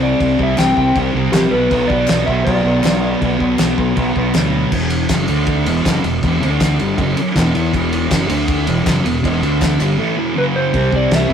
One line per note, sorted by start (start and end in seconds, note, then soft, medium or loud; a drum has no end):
0.00 0.12 C2 loud
0.00 0.19 C3 medium
0.00 0.21 G3 medium
0.00 0.22 C4 medium
0.00 0.41 D5 medium
0.20 0.36 C2 loud
0.20 0.56 C3 medium
0.20 0.41 G3 medium
0.20 0.38 C4 medium
0.20 kick loud
0.20 crash medium
0.39 0.55 C2 medium
0.39 0.58 G3 medium
0.39 0.59 C4 medium
0.39 kick medium
0.43 0.61 E5 medium
0.57 0.74 C2 medium
0.57 0.95 C3 medium
0.57 0.79 G3 medium
0.57 0.76 C4 medium
0.57 0.76 G5 loud
0.57 snare loud
0.57 clap medium
0.57 crash medium
0.77 0.92 C2 medium
0.77 0.97 G3 medium
0.77 0.98 C4 medium
0.77 0.95 G5 medium
0.77 kick loud
0.95 1.11 C2 loud
0.95 1.32 C3 loud
0.95 1.16 G3 loud
0.95 1.13 C4 loud
0.95 kick loud
0.95 crash medium
1.14 1.29 C2 medium
1.14 1.34 G3 medium
1.14 1.34 C4 medium
1.32 1.48 A#1 loud
1.32 1.51 C3 medium
1.32 1.52 G3 medium
1.32 1.51 C4 medium
1.32 1.52 G4 loud
1.32 snare loud
1.32 clap loud
1.32 crash medium
1.51 1.67 B1 loud
1.51 1.71 F#3 medium
1.51 1.72 B3 loud
1.51 1.91 B4 loud
1.55 1.69 B2 medium
1.70 1.86 B1 loud
1.70 2.08 B2 medium
1.70 1.92 F#3 loud
1.70 1.89 B3 loud
1.70 kick loud
1.70 crash medium
1.88 2.04 B1 medium
1.88 2.11 B3 medium
1.88 2.26 D5 loud
1.88 kick medium
1.92 2.10 F#3 medium
2.07 2.24 B1 medium
2.07 2.45 B2 medium
2.07 2.30 F#3 medium
2.07 2.28 B3 medium
2.07 snare loud
2.07 clap medium
2.07 crash medium
2.26 2.42 B1 medium
2.26 2.48 B3 medium
2.26 2.46 E5 loud
2.26 kick medium
2.31 2.46 F#3 medium
2.44 2.61 B1 loud
2.44 2.81 B2 loud
2.44 2.65 F#3 loud
2.44 2.64 B3 loud
2.44 4.29 D5 medium
2.44 kick loud
2.44 crash medium
2.64 2.80 B1 loud
2.64 2.83 F#3 medium
2.64 2.85 B3 medium
2.83 3.14 B1 loud
2.83 3.19 B2 medium
2.83 3.21 F#3 medium
2.83 3.23 B3 medium
2.83 snare loud
2.83 clap loud
2.83 crash medium
3.21 3.37 B1 loud
3.21 3.58 B2 medium
3.21 3.40 F#3 medium
3.21 3.38 B3 medium
3.21 kick loud
3.21 crash medium
3.39 3.55 B1 medium
3.39 3.60 F#3 medium
3.39 3.61 B3 medium
3.39 kick medium
3.59 3.74 B1 medium
3.59 3.95 B2 medium
3.59 3.81 F#3 medium
3.59 3.77 B3 medium
3.59 snare loud
3.59 clap loud
3.59 crash medium
3.78 3.93 B1 medium
3.78 3.99 B3 medium
3.78 kick loud
3.82 3.97 F#3 medium
3.97 4.12 B1 loud
3.97 4.34 B2 loud
3.97 4.18 F#3 loud
3.97 4.16 B3 loud
3.97 kick loud
3.97 crash medium
4.16 4.31 B1 medium
4.16 4.35 F#3 medium
4.16 4.36 B3 medium
4.16 kick medium
4.34 4.64 D2 loud
4.34 4.71 B2 medium
4.34 4.72 F#3 medium
4.34 4.72 B3 medium
4.34 snare loud
4.34 clap loud
4.34 crash medium
4.72 5.07 E1 loud
4.72 5.09 E2 medium
4.72 5.09 B2 loud
4.72 5.09 E3 loud
4.72 kick loud
4.72 crash loud
4.90 ride medium
5.09 5.27 F#1 medium
5.09 5.28 F#2 loud
5.09 5.28 C#3 loud
5.09 5.28 F#3 loud
5.09 kick loud
5.09 snare loud
5.09 clap medium
5.09 ride loud
5.28 5.63 D2 loud
5.28 5.66 D3 loud
5.28 5.66 A3 loud
5.28 5.66 D4 loud
5.28 ride medium
5.46 kick loud
5.46 ride loud
5.66 5.84 E1 loud
5.66 5.84 E2 medium
5.66 5.85 B2 medium
5.66 5.85 E3 loud
5.66 ride medium
5.85 6.02 F#1 loud
5.85 6.04 F#2 medium
5.85 6.04 C#3 medium
5.85 6.04 F#3 loud
5.85 kick loud
5.85 snare loud
5.85 clap loud
5.85 ride loud
6.03 6.21 E1 medium
6.03 6.19 E2 medium
6.03 6.19 B2 medium
6.03 ride medium
6.23 6.40 E1 loud
6.23 6.41 E2 medium
6.23 6.43 B2 medium
6.23 6.43 E3 loud
6.23 kick loud
6.23 ride loud
6.41 6.76 D2 medium
6.41 6.79 D3 medium
6.41 6.79 A3 loud
6.41 6.80 D4 loud
6.41 ride medium
6.60 kick loud
6.60 snare loud
6.60 clap loud
6.60 ride loud
6.79 6.97 G1 medium
6.79 6.98 G2 loud
6.79 6.98 D3 medium
6.79 6.98 G3 loud
6.79 ride medium
6.98 7.15 F#1 loud
6.98 7.16 F#2 loud
6.98 7.17 C#3 loud
6.98 7.17 F#3 loud
6.98 kick loud
6.98 ride loud
7.17 muted distorted electric guitar stroke medium
7.17 ride medium
7.35 7.53 E1 loud
7.35 7.54 E2 medium
7.35 7.54 B2 loud
7.35 7.53 E3 medium
7.35 kick loud
7.35 snare loud
7.35 clap loud
7.35 ride loud
7.54 7.72 E2 loud
7.54 7.73 E3 loud
7.54 7.73 B3 loud
7.54 7.73 E4 loud
7.54 ride medium
7.73 8.08 E1 medium
7.73 8.10 E2 medium
7.73 8.10 B2 medium
7.73 8.11 E3 loud
7.73 kick loud
7.73 ride loud
7.93 ride medium
8.10 8.28 F#1 medium
8.10 8.29 F#2 loud
8.10 8.29 C#3 loud
8.10 8.29 F#3 loud
8.10 kick loud
8.10 snare loud
8.10 clap medium
8.10 ride loud
8.29 8.65 D2 loud
8.29 8.66 D3 medium
8.29 8.67 A3 loud
8.29 8.67 D4 loud
8.29 ride medium
8.48 kick loud
8.48 ride loud
8.67 8.85 E1 loud
8.67 8.85 E2 loud
8.67 8.86 B2 loud
8.67 8.86 E3 loud
8.67 ride medium
8.85 9.03 F#1 loud
8.85 9.04 F#2 medium
8.85 9.04 C#3 medium
8.85 9.05 F#3 loud
8.85 kick loud
8.85 snare loud
8.85 clap loud
8.85 ride loud
9.04 9.22 E1 medium
9.04 9.20 E2 medium
9.04 9.20 B2 medium
9.04 ride medium
9.23 9.41 E1 loud
9.23 9.42 E2 medium
9.23 9.42 B2 medium
9.23 9.42 E3 loud
9.23 kick loud
9.23 ride loud
9.42 9.77 D2 medium
9.42 9.79 D3 loud
9.42 9.80 A3 medium
9.42 9.80 D4 loud
9.42 ride medium
9.62 kick loud
9.62 snare loud
9.62 clap medium
9.62 ride loud
9.79 9.97 G1 loud
9.79 9.98 G2 medium
9.79 9.97 D3 medium
9.79 9.99 G3 medium
9.79 clap medium
9.79 ride medium
9.98 10.17 A2 loud
9.98 10.17 E3 loud
9.98 10.18 A3 loud
10.18 10.35 E2 medium
10.18 10.36 B2 loud
10.18 10.36 E3 loud
10.36 10.73 F#2 medium
10.36 10.73 C#3 loud
10.36 10.74 F#3 medium
10.36 10.43 B4 medium
10.56 10.94 C5 loud
10.73 10.89 C2 loud
10.73 11.11 C3 medium
10.73 10.94 G3 medium
10.73 10.92 C4 medium
10.73 kick loud
10.73 crash medium
10.92 11.08 C2 medium
10.92 11.13 G3 medium
10.92 11.14 C4 medium
10.92 11.14 D5 loud
10.92 kick medium
11.11 11.26 C2 medium
11.11 11.33 C3 medium
11.11 11.31 G3 medium
11.11 11.28 C4 medium
11.11 snare loud
11.11 crash medium
11.15 11.32 E5 loud
11.29 11.33 C2 loud
11.29 11.33 C4 medium
11.29 kick medium